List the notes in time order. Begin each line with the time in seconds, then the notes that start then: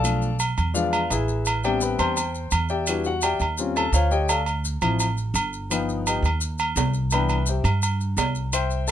Already playing: B1 A4 D5 F5 A5
0.03 F3 A3 D4, low agogo, maracas
0.22 maracas
0.39 low agogo, maracas
0.58 E2, low agogo, maracas
0.74 F3 G#3 D4 F4 B4 D5 F5, maracas
0.93 low agogo, maracas
1.10 A1 E4 G#4 B4 E5, low agogo, maracas
1.28 maracas
1.46 low agogo, maracas
1.64 G3 B3 C4 D4 G4 D5 E5 G5, low agogo, maracas
1.81 B4 E5 G5 B5, maracas
1.99 E2 C5 G5 A5 C6, low agogo, maracas
2.17 low agogo, maracas
2.35 maracas
2.51 E2, low agogo, maracas
2.69 G4 D5 E5 G5, maracas
2.87 G3 D4 E4 F#4 G4 B4 E5, low agogo, maracas
3.04 F#4 F#5, maracas
3.22 G4 D5 E5 G5, low agogo, maracas
3.40 D#2, low agogo, maracas
3.58 G3 C4 C#4 F4, maracas
3.76 A4 A5, low agogo, maracas
3.92 D2 F4 C5 C#5 F5, low agogo, maracas
4.11 G4 C#5 D#5 G5, maracas
4.29 A4 D5 F5 A5, low agogo, maracas
4.46 low agogo, maracas
4.65 maracas
4.82 A1 F3 C4 E4, low agogo, maracas
5.00 low agogo, maracas
5.17 maracas
5.34 G1, low agogo, maracas
5.53 maracas
5.70 F3 B3 D#4 B4 F5 G5 B5, low agogo, maracas
5.89 maracas
6.07 G4 B4 D#5 G5, low agogo, maracas
6.22 D#2, low agogo, maracas
6.41 maracas
6.58 low agogo, maracas
6.76 C2, low timbale, low agogo, maracas
6.94 maracas
7.11 E3 B3 D4 B4 E5 G5 B5, low agogo, maracas
7.29 low agogo, maracas
7.46 G4 C5 E5 G5, maracas
7.64 G2, low agogo, maracas
7.82 low agogo, maracas
8.01 maracas
8.17 C2, low timbale, low agogo, maracas
8.35 maracas
8.53 C5 E5 G5 C6, low agogo, maracas
8.70 maracas
8.88 A4 A5, maracas